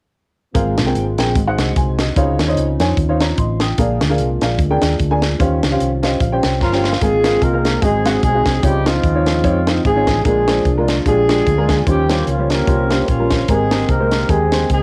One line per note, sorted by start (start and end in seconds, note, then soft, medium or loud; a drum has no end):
0.54 0.79 G#1 loud
0.54 1.14 G#2 medium
0.54 1.34 G#3 medium
0.54 1.34 A#3 medium
0.54 3.74 C4 medium
0.54 0.74 C4 medium
0.54 1.35 F4 medium
0.54 0.74 G#4 medium
0.54 0.75 A#4 medium
0.54 0.75 F5 medium
0.54 kick loud
0.54 closed hi-hat medium
0.77 0.92 C2 medium
0.77 snare loud
0.77 closed hi-hat medium
0.86 1.04 C4 medium
0.86 1.04 G#4 medium
0.86 1.03 A#4 medium
0.86 1.03 G5 medium
0.95 1.15 G#1 medium
0.95 closed hi-hat medium
1.18 1.33 A#1 medium
1.18 1.33 C4 medium
1.18 1.33 G#4 medium
1.18 1.33 A#4 medium
1.18 1.33 G5 medium
1.18 snare medium
1.18 closed hi-hat medium
1.35 1.55 G#1 medium
1.35 1.95 G#2 medium
1.35 2.15 G#3 medium
1.35 2.15 D#4 medium
1.35 2.15 F#4 medium
1.35 kick loud
1.35 closed hi-hat medium
1.47 1.70 D#4 medium
1.47 1.70 G#4 medium
1.47 1.70 C5 medium
1.47 1.70 F#5 medium
1.58 1.73 C2 medium
1.58 snare medium
1.58 closed hi-hat medium
1.76 2.10 C2 medium
1.76 1.98 C5 medium
1.76 1.98 G#5 medium
1.76 kick medium
1.76 closed hi-hat medium
1.99 2.38 F#4 medium
1.99 2.38 D#5 medium
1.99 snare loud
1.99 closed hi-hat medium
2.16 2.36 C#2 loud
2.16 2.76 C#3 medium
2.16 3.77 C#4 medium
2.16 2.36 D#4 medium
2.16 3.77 D#4 medium
2.16 6.97 F4 medium
2.16 2.36 C5 medium
2.16 2.36 C#5 medium
2.16 2.36 F5 medium
2.16 kick loud
2.16 closed hi-hat medium
2.39 2.54 D#2 medium
2.39 snare loud
2.39 closed hi-hat medium
2.48 2.65 D#4 medium
2.48 2.65 C5 medium
2.48 2.65 C#5 medium
2.48 2.65 D#5 medium
2.57 2.76 C#2 medium
2.57 closed hi-hat medium
2.80 2.95 F2 medium
2.80 2.95 D#4 medium
2.80 2.95 C5 medium
2.80 2.95 C#5 medium
2.80 2.95 G#5 medium
2.80 snare medium
2.80 closed hi-hat medium
2.97 3.31 D#2 medium
2.97 kick loud
2.97 closed hi-hat medium
3.09 3.32 D#4 medium
3.09 3.20 C5 medium
3.09 3.19 C#5 medium
3.09 3.20 F5 medium
3.20 3.37 C#5 soft
3.20 3.37 A#5 medium
3.20 snare loud
3.20 closed hi-hat medium
3.38 3.72 A1 medium
3.38 3.60 D#5 medium
3.38 3.60 C6 medium
3.38 kick medium
3.38 closed hi-hat medium
3.60 4.00 G5 soft
3.60 3.99 D#6 medium
3.60 snare loud
3.60 closed hi-hat medium
3.78 3.98 A#1 loud
3.78 4.38 A#2 medium
3.78 5.38 G#3 medium
3.78 5.38 A#3 medium
3.78 3.98 D4 medium
3.78 5.39 D4 medium
3.78 3.98 G#4 medium
3.78 3.98 A#4 medium
3.78 3.98 F5 medium
3.78 kick medium
3.78 closed hi-hat loud
4.01 4.16 D2 medium
4.01 snare loud
4.01 closed hi-hat medium
4.09 4.27 D4 medium
4.09 4.27 G#4 medium
4.09 4.27 A#4 medium
4.09 4.27 F5 medium
4.18 4.38 C2 medium
4.18 closed hi-hat medium
4.41 4.57 A#1 medium
4.41 4.57 D4 medium
4.41 4.57 G#4 medium
4.41 4.57 A#4 medium
4.41 4.57 F5 medium
4.41 snare medium
4.41 closed hi-hat medium
4.59 4.78 D2 medium
4.59 kick loud
4.59 closed hi-hat medium
4.70 4.93 D4 medium
4.70 4.93 G#4 medium
4.70 4.93 A#4 medium
4.70 4.93 G5 medium
4.82 4.97 D#2 medium
4.82 snare medium
4.82 closed hi-hat medium
4.99 5.34 D2 medium
4.99 kick medium
4.99 closed hi-hat medium
5.11 5.29 D4 medium
5.11 5.29 G#4 medium
5.11 5.29 A#4 medium
5.11 5.29 G#5 medium
5.22 snare loud
5.22 closed hi-hat medium
5.39 5.59 D#2 loud
5.39 5.99 D#3 medium
5.39 7.00 G3 medium
5.39 5.59 C#4 medium
5.39 7.00 C#4 medium
5.39 5.59 G4 medium
5.39 5.59 C5 medium
5.39 7.00 C5 medium
5.39 5.59 F5 medium
5.39 kick loud
5.39 closed hi-hat loud
5.63 5.78 C#2 medium
5.63 snare loud
5.63 closed hi-hat medium
5.71 5.88 C#4 medium
5.71 5.88 G4 medium
5.71 5.89 C5 medium
5.71 5.88 F5 medium
5.80 6.15 C2 medium
5.80 closed hi-hat medium
6.02 6.18 C#4 medium
6.02 6.18 G4 medium
6.02 6.18 C5 medium
6.02 6.19 D#5 medium
6.02 6.18 F5 medium
6.02 snare medium
6.02 closed hi-hat medium
6.20 6.40 A#1 medium
6.20 6.42 F5 medium
6.20 kick loud
6.20 closed hi-hat medium
6.32 6.55 C#4 medium
6.32 6.55 G4 medium
6.32 6.55 C5 medium
6.32 6.43 G5 medium
6.43 6.59 C2 medium
6.43 6.60 G5 medium
6.43 snare medium
6.43 closed hi-hat medium
6.61 6.95 G1 medium
6.61 6.98 F3 medium
6.61 6.99 A#3 medium
6.61 6.98 C#4 medium
6.61 6.98 F4 medium
6.61 6.83 A#5 medium
6.61 kick medium
6.61 snare soft
6.72 6.91 C#4 medium
6.72 6.91 G4 medium
6.72 6.91 C5 medium
6.72 6.91 G5 medium
6.72 snare medium
6.84 7.00 F5 medium
6.84 snare medium
6.93 snare medium
7.01 7.36 G#1 medium
7.01 7.61 G#2 medium
7.01 7.42 G#3 medium
7.01 8.61 G#3 medium
7.01 7.81 A#3 medium
7.01 10.22 C4 medium
7.01 7.78 C4 medium
7.01 7.15 C4 medium
7.01 7.81 F4 medium
7.01 7.40 F4 medium
7.01 7.42 G#4 medium
7.01 7.15 G#4 medium
7.01 7.15 A#4 medium
7.01 7.15 F5 medium
7.01 kick loud
7.01 closed hi-hat medium
7.24 7.39 C4 medium
7.24 7.40 G#4 medium
7.24 7.40 A#4 medium
7.24 7.40 F5 medium
7.24 snare loud
7.24 closed hi-hat medium
7.42 7.76 C2 medium
7.42 7.82 A#3 medium
7.42 7.79 D#4 medium
7.42 7.79 F4 medium
7.42 7.82 A#4 loud
7.42 kick medium
7.42 closed hi-hat medium
7.53 7.71 C4 medium
7.53 7.71 G#4 medium
7.53 7.71 A#4 medium
7.53 7.71 F5 medium
7.65 snare medium
7.65 closed hi-hat medium
7.82 8.17 G#1 medium
7.82 8.42 G#2 medium
7.82 8.62 F#3 medium
7.82 8.21 G#3 medium
7.82 7.95 C4 medium
7.82 8.21 C4 medium
7.82 10.22 D#4 medium
7.82 8.21 D#4 medium
7.82 7.95 F#4 medium
7.82 8.21 G#4 medium
7.82 7.95 G#4 medium
7.82 7.95 D#5 medium
7.82 kick loud
7.82 closed hi-hat medium
8.06 8.21 C4 medium
8.06 8.21 F#4 medium
8.06 8.21 G#4 medium
8.06 8.21 F#5 medium
8.06 snare medium
8.06 closed hi-hat medium
8.22 8.42 B1 medium
8.22 8.60 G#3 medium
8.22 8.60 C4 medium
8.22 8.60 D#4 medium
8.22 8.60 G#4 medium
8.22 kick medium
8.22 closed hi-hat medium
8.35 8.52 C4 medium
8.35 8.52 F#4 medium
8.35 8.52 G#4 medium
8.35 8.52 D#5 medium
8.46 8.61 C2 medium
8.46 kick medium
8.46 snare medium
8.46 closed hi-hat medium
8.62 8.98 C#2 loud
8.62 10.23 C#3 medium
8.62 9.23 C#3 medium
8.62 13.45 F3 medium
8.62 8.86 G3 medium
8.62 8.85 C4 medium
8.62 8.76 C4 medium
8.62 9.40 D#4 medium
8.62 8.76 D#4 medium
8.62 8.76 F4 medium
8.62 8.86 G4 medium
8.62 8.76 C#5 medium
8.62 kick loud
8.62 closed hi-hat loud
8.86 9.83 F3 medium
8.86 9.81 G#3 medium
8.86 9.01 C4 medium
8.86 9.80 C4 medium
8.86 9.01 D#4 medium
8.86 9.83 F4 medium
8.86 9.01 F4 medium
8.86 9.01 D#5 medium
8.86 snare loud
8.86 closed hi-hat medium
9.04 9.44 D#2 medium
9.04 kick medium
9.04 closed hi-hat medium
9.15 9.33 C4 medium
9.15 9.33 D#4 medium
9.15 9.33 F4 medium
9.15 9.33 C#5 medium
9.26 snare medium
9.26 closed hi-hat medium
9.44 9.78 F2 medium
9.44 9.57 C4 medium
9.44 9.57 D#4 medium
9.44 9.57 F4 medium
9.44 9.57 C#5 medium
9.44 kick loud
9.44 closed hi-hat medium
9.67 9.82 C4 medium
9.67 9.82 D#4 medium
9.67 9.82 F4 medium
9.67 9.82 C5 medium
9.67 snare medium
9.67 closed hi-hat medium
9.84 10.04 G#1 medium
9.84 10.22 G#3 medium
9.84 10.22 C4 medium
9.84 10.22 F4 medium
9.84 10.22 G#4 medium
9.84 kick medium
9.84 closed hi-hat medium
9.96 10.14 C4 medium
9.96 10.14 D#4 medium
9.96 10.14 F4 medium
9.96 10.14 C#5 medium
10.07 10.22 A1 medium
10.07 kick medium
10.07 snare medium
10.07 closed hi-hat medium
10.24 10.60 A#1 medium
10.24 10.84 A#2 medium
10.24 10.76 G#3 medium
10.24 10.38 G#3 medium
10.24 11.85 G#3 medium
10.24 11.85 A#3 medium
10.24 10.38 D4 medium
10.24 11.02 D4 medium
10.24 11.85 D4 medium
10.24 10.38 F4 medium
10.24 11.02 F4 medium
10.24 10.76 G#4 medium
10.24 10.38 A#4 medium
10.24 kick loud
10.24 closed hi-hat loud
10.48 10.63 G#3 medium
10.48 10.63 D4 medium
10.48 10.63 F4 medium
10.48 10.63 C5 medium
10.48 snare loud
10.48 closed hi-hat medium
10.65 11.00 C2 medium
10.65 kick medium
10.65 closed hi-hat medium
10.78 10.95 G#3 medium
10.78 10.95 D4 medium
10.78 10.95 F4 medium
10.78 10.95 A#4 medium
10.88 snare medium
10.88 closed hi-hat medium
11.06 11.40 A#1 medium
11.06 11.19 G#3 medium
11.06 11.83 G#3 medium
11.06 11.19 D4 medium
11.06 11.83 D4 medium
11.06 11.19 F4 medium
11.06 11.83 F4 medium
11.06 11.19 G4 medium
11.06 11.83 G#4 medium
11.06 kick loud
11.06 closed hi-hat medium
11.28 11.44 G#3 medium
11.28 11.44 D4 medium
11.28 11.44 F4 medium
11.28 11.44 G4 medium
11.28 snare loud
11.28 closed hi-hat medium
11.46 11.81 D2 medium
11.46 kick medium
11.46 closed hi-hat medium
11.58 11.76 G#3 medium
11.58 11.76 D4 medium
11.58 11.76 F4 medium
11.58 11.76 A#4 medium
11.69 kick medium
11.69 snare loud
11.69 closed hi-hat medium
11.86 12.21 D#2 medium
11.86 14.83 D#3 medium
11.86 12.46 D#3 medium
11.86 12.00 G3 medium
11.86 12.25 G3 medium
11.86 12.51 A#3 medium
11.86 12.00 C#4 medium
11.86 13.47 C#4 medium
11.86 12.50 C#4 medium
11.86 12.00 F4 medium
11.86 12.25 G4 medium
11.86 12.00 C5 medium
11.86 14.83 C5 medium
11.86 kick loud
11.86 closed hi-hat loud
12.10 12.25 G3 medium
12.10 12.25 C#4 medium
12.10 12.25 F4 medium
12.10 12.25 C5 medium
12.10 snare loud
12.10 closed hi-hat medium
12.27 12.62 C#2 medium
12.27 12.51 F3 medium
12.27 12.51 F4 medium
12.27 closed hi-hat medium
12.39 12.56 G3 medium
12.39 12.57 C#4 medium
12.39 12.57 F4 medium
12.39 12.57 G4 medium
12.50 13.08 A#3 medium
12.50 13.07 C#4 medium
12.50 13.28 G4 medium
12.50 13.08 A#4 medium
12.50 snare medium
12.50 closed hi-hat medium
12.67 13.02 C2 medium
12.67 12.81 G3 medium
12.67 12.81 C#4 medium
12.67 12.81 F4 medium
12.67 12.81 C5 medium
12.67 kick loud
12.67 closed hi-hat medium
12.90 13.06 G3 medium
12.90 13.05 C#4 medium
12.90 13.06 F4 medium
12.90 13.06 C5 medium
12.90 snare medium
12.90 closed hi-hat medium
13.08 13.42 A#1 medium
13.08 13.49 F3 medium
13.08 13.46 A#3 medium
13.08 13.46 C#4 medium
13.08 13.49 F4 medium
13.08 kick medium
13.08 closed hi-hat medium
13.19 13.37 G3 medium
13.19 13.37 C#4 medium
13.19 13.37 F4 medium
13.19 13.37 A#4 medium
13.31 kick medium
13.31 snare medium
13.31 closed hi-hat medium
13.48 13.83 G#1 loud
13.48 14.08 G#2 medium
13.48 13.62 G#3 medium
13.48 13.89 G#3 medium
13.48 14.83 A#3 medium
13.48 13.62 C4 medium
13.48 14.26 C4 medium
13.48 13.88 D#4 medium
13.48 13.62 G4 medium
13.48 13.89 G#4 medium
13.48 13.62 A#4 medium
13.48 kick loud
13.48 closed hi-hat loud
13.71 13.87 G#3 medium
13.71 13.87 C4 medium
13.71 13.87 G4 medium
13.71 13.87 A#4 medium
13.71 snare loud
13.71 closed hi-hat medium
13.89 14.23 C2 medium
13.89 14.29 A#3 medium
13.89 14.29 D#4 medium
13.89 14.66 G4 medium
13.89 14.29 A#4 medium
13.89 kick medium
13.89 closed hi-hat medium
14.00 14.18 G#3 medium
14.00 14.18 C4 medium
14.00 14.18 G4 medium
14.00 14.18 C5 medium
14.11 snare medium
14.11 closed hi-hat medium
14.29 14.64 D#2 medium
14.29 14.43 G#3 medium
14.29 14.70 G#3 medium
14.29 14.43 C4 medium
14.29 14.70 C4 medium
14.29 14.70 D#4 medium
14.29 14.43 G4 medium
14.29 14.70 G#4 medium
14.29 14.43 A#4 medium
14.29 kick loud
14.29 closed hi-hat medium
14.52 14.68 G#3 medium
14.52 14.68 C4 medium
14.52 14.68 G4 medium
14.52 14.68 C5 medium
14.52 snare medium
14.52 closed hi-hat medium
14.70 14.83 C#2 medium
14.70 14.83 G#3 medium
14.70 14.83 C4 medium
14.70 14.83 D#4 medium
14.70 14.83 G#4 medium
14.70 kick medium
14.70 closed hi-hat medium